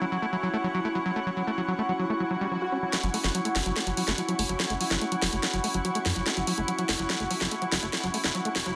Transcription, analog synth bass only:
3.04 F#1
3.24 F#1
3.56 F#1
3.66 F#1
3.87 F#1
4.08 F#1
4.39 F#1
4.49 F#1
4.70 F#1
4.91 F#1
5.22 E1
5.33 F#1
5.54 F#1
5.74 F#1
6.06 F#2
6.16 F#1
6.37 F#1
6.58 F#1
6.89 F#1
6.99 F#1
7.20 F#1
7.41 F#1
7.72 F#1
7.83 F#1
8.04 F#1
8.24 F#1
8.56 E1
8.66 F#1

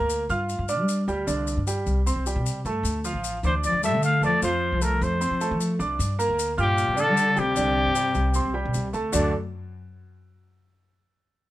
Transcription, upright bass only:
0.00 D2
0.29 G2
0.59 G2
0.79 G3
1.08 D2
1.28 C2
1.57 G2
1.86 C2
2.16 C2
2.36 C3
2.65 G2
2.83 D2
3.13 A1
3.43 D2
3.72 D2
3.92 D3
4.21 E2
4.42 F2
4.72 C2
5.01 F2
5.31 F2
5.51 F3
5.79 C2
5.99 G2
6.29 D2
6.58 G2
6.88 G2
7.08 G3
7.37 D2
7.57 C2
7.86 G2
8.15 C2
8.45 C2
8.65 C3
8.75 C2
8.94 D2
9.14 D2

